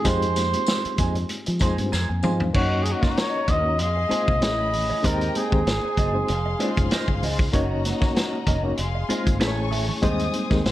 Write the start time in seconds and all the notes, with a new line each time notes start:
Already playing: G#3 C4 D#4 F4 G4 C5
0.04 F2 G#3 C4 D#4 F4 G4 G#4 C5, kick, closed hi-hat, tambourine
0.22 closed hi-hat, muted conga
0.36 snare, closed hi-hat, tambourine, high conga
0.53 muted clean electric guitar stroke, closed hi-hat, high conga
0.67 snare, tambourine, muted conga
0.84 muted clean electric guitar stroke, muted fingered electric bass stroke, closed hi-hat
0.98 F2 D#4 G#4 C5, kick, closed hi-hat, tambourine, high conga, low conga
1.15 muted clean electric guitar stroke, closed hi-hat
1.29 closed hi-hat, muted conga
1.46 F3, muted clean electric guitar stroke, closed hi-hat
1.59 F2 G#3 C4 D#4 F4 G#4 C5 G#5, kick, closed hi-hat, tambourine, high conga
1.78 G2, muted clean electric guitar stroke, closed hi-hat, high conga
1.92 F2 D#4 G#4 C5 A#5, snare, tambourine, muted conga
2.09 F2 G#5, muted clean electric guitar stroke, high conga
2.23 F3 G#3 C4 D#4 F4 G#4 C5 F5, mid tom, tambourine, low conga
2.40 muted clean electric guitar stroke, floor tom, low conga
2.53 F#2 A#3 C#4 D#4 F#4 A#4 C#5 D#5 A#5, kick, crash
2.72 muted conga
2.83 G#4, closed hi-hat
2.87 high conga
2.92 F#4
3.01 A#3 C#4 D#4 F4 F#4 D#5, muted clean electric guitar stroke, kick, snare, high conga
3.10 F#4
3.17 C#5, snare, closed hi-hat
3.34 muted clean electric guitar stroke
3.48 D#2 D#4 A#4 C#5 D#5, kick, closed hi-hat, high conga, low conga
3.64 A#3 C#4 D#4 F#4 C#5, muted clean electric guitar stroke
3.79 F2 G#4 D#5 F5 C6, muted clean electric guitar stroke, closed hi-hat
3.97 muted clean electric guitar stroke
4.09 G#3 C4 D#4 F4 G#4 C5, muted fingered electric bass stroke, closed hi-hat, high conga
4.28 C2, muted clean electric guitar stroke, kick, high conga
4.41 A1 A3 C#4 E4 G#4 C#5 B5, muted clean electric guitar stroke, snare, closed hi-hat, muted conga
4.58 muted clean electric guitar stroke
4.73 open hi-hat, low conga
4.90 E4 G#4 C#5, low conga
5.03 D#2 G#3 C4 D#4 G4 A#4 C5 D#5 G5 A#5, kick, closed hi-hat, muted conga
5.21 closed hi-hat, muted conga
5.35 G#4, closed hi-hat, high conga
5.51 D#2 G#3 C4 D#4 G4 C5, muted clean electric guitar stroke, kick, high conga
5.66 G#1 D#4 C5 G#5, snare, closed hi-hat, muted conga
5.83 muted clean electric guitar stroke, muted conga
5.97 F#1 F#4 C5 D#5, kick, closed hi-hat, high conga, low conga
6.13 G#3 C4 D#4 F#4 C5, muted clean electric guitar stroke
6.28 F1 G#4 F5 C6, muted clean electric guitar stroke, closed hi-hat
6.46 muted clean electric guitar stroke, muted conga
6.59 G#3 C#4 D#4 F4 C5 D#5, closed hi-hat, high conga
6.76 F1, muted clean electric guitar stroke, kick, closed hi-hat, high conga
6.91 F4 C5 D#5, snare, closed hi-hat
7.08 G1, muted clean electric guitar stroke, kick
7.22 C#2 F4 C5 D#5, open hi-hat, low conga
7.39 muted clean electric guitar stroke, kick, low conga
7.53 F#1 A#3 C#4 D#4 F#4 A#4 C#5 D#5 A#5, kick, closed hi-hat, muted conga
7.85 snare, closed hi-hat, high conga
8.01 A#3 C#4 D#4 F#4 C#5, muted clean electric guitar stroke, kick, snare, high conga
8.16 snare, closed hi-hat, muted conga
8.33 muted clean electric guitar stroke, muted conga
8.47 F1 F#4 A#4 D#5, kick, closed hi-hat, high conga, low conga
8.63 A#3 C#4 D#4 F#4 C#5, muted clean electric guitar stroke
8.77 F1 G#4 F5 C6, muted clean electric guitar stroke, closed hi-hat
8.95 muted clean electric guitar stroke
9.09 G#3 C4 D#4 F4 G#4 C5 D#5, muted fingered electric bass stroke, closed hi-hat, high conga
9.25 G1, muted clean electric guitar stroke, kick, closed hi-hat, high conga
9.40 A1 A3 C#4 E4 G#4 A4 B4 C#5 E5 G#5 C#6, snare, closed hi-hat
9.48 C#5
9.56 muted clean electric guitar stroke, muted conga
9.71 G#4 C#5 E5, open hi-hat, low conga
9.88 muted clean electric guitar stroke, low conga
10.02 D#2 G3 G#3 C4 D#4 G4 C5 D#5 G#5 D#6, kick, closed hi-hat
10.19 closed hi-hat, muted conga
10.33 closed hi-hat, high conga
10.50 D#2 G#3 C4 D#4 G4 A#4, muted clean electric guitar stroke, kick, snare, high conga
10.65 G#1 G#4 F#5 C6, snare, closed hi-hat, muted conga